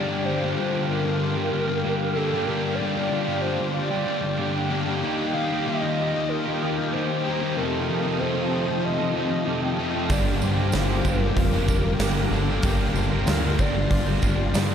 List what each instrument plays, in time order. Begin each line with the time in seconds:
Already playing: distorted electric guitar G2 D3 G3, overdriven electric guitar G2 D3 G3 A#3 D4 G4, clean electric guitar G4, analog synth pad G4 F5 G5 D6, soft synth lead D5
0.25 distorted electric guitar G2 D3 G3, soft synth lead C5
0.41 distorted electric guitar D3 G3, overdriven electric guitar G3 A#3 D4 G4
0.56 overdriven electric guitar G2 D3 G3 A#3 D4, distorted electric guitar G2 D3 G3, clean electric guitar F4
0.60 overdriven electric guitar G4
0.73 distorted electric guitar D3 G3
0.87 overdriven electric guitar G3 A#3 D4, soft synth lead A#4
0.91 overdriven electric guitar G4
1.05 distorted electric guitar D3 G3, muted overdriven electric guitar stroke
1.21 clean electric guitar F4
1.35 distorted electric guitar D3 G3, overdriven electric guitar G3 A#3 D4 G4
1.52 distorted electric guitar G2 D3 G3, overdriven electric guitar G3 A#3 D4 G4
1.68 distorted electric guitar D3 G3, muted overdriven electric guitar stroke
1.84 distorted electric guitar G2 D3 G3, overdriven electric guitar G2 D3 G3 A#3 D4 G4, clean electric guitar G4
2.00 overdriven electric guitar G3 A#3 D4 G4
2.16 distorted electric guitar G2 D3 G3, overdriven electric guitar A#3 D4, soft synth lead A4
2.33 distorted electric guitar D3 G3, overdriven electric guitar G3 A#3 D4 G4
2.45 distorted electric guitar G2, overdriven electric guitar G2 D3, clean electric guitar G4, soft synth lead A#4
2.49 distorted electric guitar D3 G3, overdriven electric guitar G3 A#3 D4 G4
2.75 soft synth lead D5
2.80 distorted electric guitar G2 D3 G3
2.95 distorted electric guitar D3 G3, overdriven electric guitar A#3 D4 G4
3.00 overdriven electric guitar G3
3.11 distorted electric guitar G2 D3 G3, overdriven electric guitar G2 D3 G3 A#3, clean electric guitar F4
3.15 overdriven electric guitar D4 G4
3.27 distorted electric guitar D3 G3
3.41 overdriven electric guitar G3 A#3, soft synth lead C5
3.46 overdriven electric guitar D4 G4
3.57 distorted electric guitar D3 G3, muted overdriven electric guitar stroke
3.74 clean electric guitar F4, soft synth lead D5
3.90 distorted electric guitar D3 G3, overdriven electric guitar A#3 D4 G4
3.95 overdriven electric guitar G3
4.05 distorted electric guitar G2 D3 G3, overdriven electric guitar G3 A#3 D4
4.09 overdriven electric guitar G4
4.21 distorted electric guitar D3 G3, muted overdriven electric guitar stroke
4.37 distorted electric guitar G2 D3 G3, overdriven electric guitar G2 D3 G3 A#3, clean electric guitar G4
4.41 overdriven electric guitar D4 G4
4.54 overdriven electric guitar G3 A#3 D4 G4
4.70 distorted electric guitar G2 D3 G3, overdriven electric guitar A#3 D4
4.86 distorted electric guitar D3 G3, overdriven electric guitar G3 A#3 D4 G4
5.01 distorted electric guitar D#3 A#3 D#4, overdriven electric guitar D#3 G3 A#3, clean electric guitar G4, analog synth pad D#5
5.06 overdriven electric guitar D#4 G4
5.33 distorted electric guitar D#3 A#3 D#4, soft synth lead F5
5.50 distorted electric guitar A#3 D#4, overdriven electric guitar A#3 D#4 G4
5.66 distorted electric guitar D#3 A#3 D#4, overdriven electric guitar D#3 G3 A#3 D#4, clean electric guitar F4, soft synth lead D#5
5.70 overdriven electric guitar G4
5.82 distorted electric guitar A#3 D#4
5.97 overdriven electric guitar G3 A#3 D#4 G4
6.14 distorted electric guitar A#3 D#4, muted overdriven electric guitar stroke
6.29 clean electric guitar F4, soft synth lead A#4
6.46 distorted electric guitar A#3 D#4, overdriven electric guitar A#3 D#4 G4
6.62 distorted electric guitar D#3 A#3 D#4, overdriven electric guitar G3 A#3 D#4 G4
6.78 distorted electric guitar A#3 D#4, muted overdriven electric guitar stroke
6.92 overdriven electric guitar D#3 G3 A#3 D#4, distorted electric guitar D#3 A#3 D#4, clean electric guitar G4, soft synth lead C5
6.96 overdriven electric guitar G4
7.08 overdriven electric guitar A#3 D#4 G4
7.26 distorted electric guitar D#3 A#3 D#4, overdriven electric guitar G3
7.40 distorted electric guitar A#3 D#4, overdriven electric guitar A#3 D#4 G4
7.56 distorted electric guitar F2 C3 F3, overdriven electric guitar D#3 F3 A3 C4 D#4 A4, clean electric guitar G4, soft synth lead A#4, analog synth pad F5 G5 D#6
7.89 distorted electric guitar F2 C3 F3
8.03 distorted electric guitar C3 F3, overdriven electric guitar C4 D#4 A4
8.19 distorted electric guitar F2 C3 F3, overdriven electric guitar F3 C4 D#4 A4, clean electric guitar F4, soft synth lead C5
8.35 distorted electric guitar C3 F3
8.51 overdriven electric guitar F3 C4 D#4 A4
8.67 distorted electric guitar C3 F3, muted overdriven electric guitar stroke
8.83 clean electric guitar F4, soft synth lead D#5
8.98 distorted electric guitar C3 F3, overdriven electric guitar C4 D#4 A4
9.14 distorted electric guitar F2 C3 F3, overdriven electric guitar F3 C4 D#4 A4
9.30 distorted electric guitar C3 F3, muted overdriven electric guitar stroke
9.46 distorted electric guitar F2 C3 F3, overdriven electric guitar F3 C4 D#4 A4, clean electric guitar G4
9.62 overdriven electric guitar C4 D#4 A4
9.78 distorted electric guitar F2 C3 F3, overdriven electric guitar D#3 A3 D#4
9.94 distorted electric guitar C3 F3, overdriven electric guitar C4 D#4 A4
10.09 fingered electric bass G1, overdriven electric guitar G2 D3 G3 A#3 D4 A#4, distorted electric guitar G2 D3 G3, clean electric guitar G4, soft synth lead D5, analog synth pad D6, kick, open hi-hat, tambourine
10.42 distorted electric guitar G2 D3 G3, fingered electric bass G2, soft synth lead C5, tambourine
10.57 distorted electric guitar G3, overdriven electric guitar G3 A#3 D4 A#4
10.61 distorted electric guitar D3
10.72 fingered electric bass G1, overdriven electric guitar G2 D3 G3 A#3 D4 A#4, distorted electric guitar G2 D3 G3, clean electric guitar F4, snare, open hi-hat, tambourine
10.90 distorted electric guitar D3 G3
11.05 fingered electric bass G1, overdriven electric guitar G3 A#3 D4 A#4, soft synth lead A#4, kick, tambourine
11.22 distorted electric guitar D3 G3, muted overdriven electric guitar stroke
11.36 fingered electric bass F1, clean electric guitar F4, kick, open hi-hat
11.53 distorted electric guitar D3 G3, overdriven electric guitar A#3 D4 A#4
11.57 overdriven electric guitar G3
11.68 distorted electric guitar G2 D3 G3, overdriven electric guitar G3 A#3 D4 A#4, kick, tambourine
11.85 distorted electric guitar D3 G3, muted overdriven electric guitar stroke
11.99 fingered electric bass G1, overdriven electric guitar G2 D3 G3 A#3, distorted electric guitar G2 D3 G3, clean electric guitar G4, snare, open hi-hat, tambourine
12.03 overdriven electric guitar D4 A#4
12.16 overdriven electric guitar G3 A#3 D4 A#4
12.31 fingered electric bass G1, distorted electric guitar G2 D3, overdriven electric guitar A#3 D4, soft synth lead A4, tambourine
12.35 distorted electric guitar G3
12.48 distorted electric guitar D3 G3, overdriven electric guitar G3 A#3 D4 A#4
12.62 fingered electric bass G1, overdriven electric guitar G2 D3 G3 A#3 D4, distorted electric guitar G2 D3 G3, clean electric guitar G4, soft synth lead A#4, analog synth pad C6, kick, open hi-hat, tambourine
12.67 overdriven electric guitar A#4
12.94 fingered electric bass G1, distorted electric guitar G2 D3, soft synth lead A#4, tambourine
12.99 distorted electric guitar G3
13.12 distorted electric guitar D3 G3, overdriven electric guitar G3 A#3 D4 A#4
13.26 fingered electric bass D2, overdriven electric guitar G2 D3 G3 A#3 D4, distorted electric guitar G2 D3 G3, clean electric guitar F4, snare, open hi-hat, tambourine
13.31 overdriven electric guitar A#4
13.44 distorted electric guitar D3 G3
13.59 fingered electric bass G1, overdriven electric guitar G3 A#3 D4 A#4, soft synth lead D5, kick, tambourine
13.76 distorted electric guitar D3 G3, muted overdriven electric guitar stroke
13.89 fingered electric bass G1, clean electric guitar F4, soft synth lead D5, kick, open hi-hat
14.07 distorted electric guitar D3 G3, overdriven electric guitar G3 A#3 D4 A#4
14.22 fingered electric bass G1, distorted electric guitar G2 D3 G3, overdriven electric guitar G3 A#3 D4 A#4, kick, tambourine
14.38 distorted electric guitar D3 G3, muted overdriven electric guitar stroke
14.54 fingered electric bass G2, distorted electric guitar G2 D3 G3, overdriven electric guitar G2 D3 G3 A#3 D4, clean electric guitar G4, snare, open hi-hat, tambourine
14.58 overdriven electric guitar A#4
14.70 overdriven electric guitar A#4